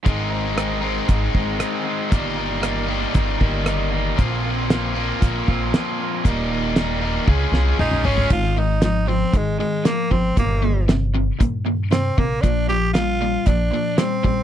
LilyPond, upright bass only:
\new Staff \with { instrumentName = "Upright bass" } { \clef bass \time 4/4 \key ees \major \tempo 4 = 116 aes,,2 aes,,8 aes,,8 r4 | g,,2 g,,8 g,,4. | bes,,2 bes,,8 bes,,8 r4 | ees,,2 des,8 c,8 bes,,8 aes,,8 |
aes,,2 aes,,8 r4 aes,,8 | g,,2 g,4. bes,,8 | bes,,2 bes,,8 r4 bes,,8 | }